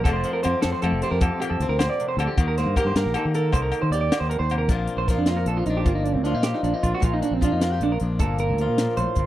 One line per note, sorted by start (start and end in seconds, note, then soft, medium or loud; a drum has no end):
0.04 0.23 F1 loud
0.04 1.20 F2 medium
0.04 0.23 F3 medium
0.04 0.83 A3 medium
0.04 0.42 C4 medium
0.04 0.13 A4 medium
0.04 kick medium
0.04 closed hi-hat medium
0.04 low agogo medium
0.09 1.03 A4 medium
0.13 0.32 C5 medium
0.24 0.62 F3 medium
0.24 closed hi-hat medium
0.33 0.43 A#4 medium
0.43 0.54 F2 medium
0.43 1.60 C4 medium
0.43 0.62 C5 medium
0.43 closed hi-hat medium
0.43 low agogo medium
0.62 0.73 F2 medium
0.62 1.41 F3 medium
0.62 0.72 A4 medium
0.62 snare medium
0.62 closed hi-hat medium
0.72 0.82 C5 medium
0.82 0.91 F2 medium
0.82 2.36 A3 medium
0.82 1.01 A4 medium
0.82 closed hi-hat medium
0.82 low agogo medium
0.92 1.01 F1 medium
1.02 2.36 G4 medium
1.02 1.11 C5 medium
1.02 closed hi-hat soft
1.11 1.29 F2 medium
1.11 1.21 A#4 medium
1.21 2.38 F2 medium
1.21 1.40 A4 medium
1.21 kick medium
1.21 closed hi-hat medium
1.21 low agogo medium
1.40 2.36 F3 medium
1.40 1.50 G4 medium
1.40 closed hi-hat medium
1.40 low agogo medium
1.50 1.59 F2 medium
1.50 1.69 A4 medium
1.60 1.68 D2 medium
1.60 2.39 C4 medium
1.60 closed hi-hat soft
1.69 1.87 D2 medium
1.69 1.79 A#4 medium
1.79 1.99 A#2 medium
1.79 1.89 C5 medium
1.79 snare loud
1.79 closed hi-hat medium
1.79 low agogo medium
1.90 2.08 D5 medium
2.00 2.19 C3 medium
2.00 closed hi-hat medium
2.08 2.18 C5 medium
2.17 2.26 D2 medium
2.17 2.39 D3 medium
2.17 2.28 A4 medium
2.17 closed hi-hat soft
2.17 low agogo medium
2.27 2.46 G4 medium
2.38 2.64 D#2 loud
2.38 3.53 D#3 medium
2.38 kick medium
2.38 closed hi-hat medium
2.38 low agogo medium
2.48 2.57 A#4 medium
2.58 2.96 A#3 medium
2.58 2.76 C5 medium
2.58 snare soft
2.58 closed hi-hat soft
2.66 2.75 G2 medium
2.76 3.34 G4 medium
2.76 2.86 A#4 medium
2.76 kick medium
2.76 closed hi-hat medium
2.76 low agogo medium
2.85 2.94 G2 medium
2.85 2.96 C5 medium
2.95 3.04 G2 loud
2.95 3.74 A#3 medium
2.95 3.15 A#4 medium
2.95 snare medium
2.95 closed hi-hat medium
3.06 3.14 A#1 medium
3.14 4.69 D#4 medium
3.14 3.25 A4 medium
3.14 closed hi-hat soft
3.14 low agogo medium
3.25 3.52 D#3 medium
3.34 3.93 A4 medium
3.34 3.53 A#4 medium
3.34 closed hi-hat soft
3.52 3.71 C2 medium
3.52 4.10 D#3 medium
3.52 3.62 C5 medium
3.52 kick medium
3.52 closed hi-hat medium
3.52 low agogo medium
3.62 3.81 A#4 medium
3.72 closed hi-hat soft
3.72 low agogo medium
3.82 3.90 D#3 medium
3.82 3.92 C5 medium
3.90 4.09 D#2 medium
3.90 4.68 G4 medium
3.90 4.00 D5 medium
3.90 closed hi-hat medium
4.01 4.20 D5 medium
4.11 4.31 D#3 medium
4.11 snare loud
4.11 closed hi-hat medium
4.11 low agogo medium
4.20 4.39 D#2 medium
4.20 4.29 C5 medium
4.30 4.50 D3 medium
4.30 4.39 A#4 medium
4.30 closed hi-hat medium
4.39 4.67 D#2 medium
4.39 4.58 C5 medium
4.50 4.69 C3 medium
4.50 closed hi-hat soft
4.50 low agogo medium
4.58 4.68 A#4 medium
4.68 4.87 A#1 medium
4.68 5.47 A#2 medium
4.68 5.08 F3 medium
4.68 5.29 A#3 medium
4.68 5.69 D4 medium
4.68 5.09 F4 medium
4.68 kick medium
4.68 closed hi-hat medium
4.87 closed hi-hat medium
4.97 5.16 A#1 medium
4.97 5.08 C5 medium
5.08 6.24 F3 medium
5.08 6.26 F4 medium
5.08 5.18 A#4 medium
5.08 kick medium
5.08 snare soft
5.08 closed hi-hat medium
5.17 5.44 F2 medium
5.17 5.28 D4 soft
5.26 5.86 A#3 medium
5.26 5.38 F4 medium
5.26 snare medium
5.26 closed hi-hat medium
5.36 5.47 A#4 medium
5.46 5.65 A#1 medium
5.46 5.87 F2 medium
5.46 5.57 A4 medium
5.46 closed hi-hat soft
5.57 5.66 F4 medium
5.66 5.84 A#1 medium
5.66 6.82 D4 medium
5.66 5.76 D#4 medium
5.66 closed hi-hat soft
5.77 5.86 G4 medium
5.85 6.16 G1 loud
5.85 6.45 A#3 medium
5.85 5.95 F4 medium
5.85 muted steel-string acoustic guitar stroke medium
5.85 kick medium
5.85 closed hi-hat medium
5.95 6.05 D#4 medium
6.05 6.15 D4 medium
6.05 closed hi-hat soft
6.14 6.33 D2 medium
6.14 6.24 C4 medium
6.24 7.41 F3 medium
6.24 6.35 D4 medium
6.24 7.42 F4 medium
6.24 closed hi-hat soft
6.34 6.52 A#2 medium
6.34 6.44 D#4 medium
6.43 7.00 A#3 medium
6.43 6.53 G4 medium
6.43 snare medium
6.43 closed hi-hat medium
6.54 6.63 D#4 medium
6.63 6.72 A#1 medium
6.63 7.03 F2 medium
6.63 6.74 D4 medium
6.63 closed hi-hat soft
6.74 6.83 D#4 medium
6.83 6.92 A#1 medium
6.83 7.00 D4 medium
6.83 6.93 F4 medium
6.83 kick soft
6.83 closed hi-hat soft
6.95 7.03 F#4 loud
7.00 7.21 A#1 loud
7.00 7.79 A#2 medium
7.00 7.60 A#3 medium
7.00 7.13 F4 medium
7.00 kick medium
7.00 closed hi-hat medium
7.14 7.22 D#4 medium
7.22 7.34 D4 medium
7.22 closed hi-hat soft
7.31 7.49 A#1 medium
7.31 7.42 C4 medium
7.41 8.58 F3 medium
7.41 7.53 D4 medium
7.41 8.58 F4 medium
7.41 kick medium
7.41 closed hi-hat medium
7.51 7.78 F2 medium
7.51 7.62 D#4 medium
7.61 8.19 A#3 medium
7.61 7.72 F4 medium
7.61 snare medium
7.61 closed hi-hat medium
7.72 7.81 G4 loud
7.80 7.98 A#1 medium
7.80 8.20 F2 medium
7.80 7.91 D4 medium
7.80 closed hi-hat medium
7.92 7.97 A#4 medium
8.00 8.18 A#1 medium
8.00 9.26 D4 medium
8.00 closed hi-hat soft
8.19 8.51 G1 loud
8.19 8.78 A#2 medium
8.19 9.26 A#3 medium
8.19 8.38 A4 medium
8.19 kick medium
8.19 closed hi-hat medium
8.38 8.93 A#4 medium
8.38 closed hi-hat medium
8.49 8.67 D2 medium
8.58 9.26 F3 medium
8.58 9.26 F4 medium
8.58 closed hi-hat soft
8.69 8.86 A#2 medium
8.78 8.98 A#2 medium
8.78 snare medium
8.78 closed hi-hat medium
8.97 9.06 A#1 medium
8.97 9.17 A2 medium
8.97 9.26 C5 medium
8.97 closed hi-hat soft
9.15 9.25 G1 medium
9.15 9.26 G2 medium
9.15 kick medium
9.15 closed hi-hat soft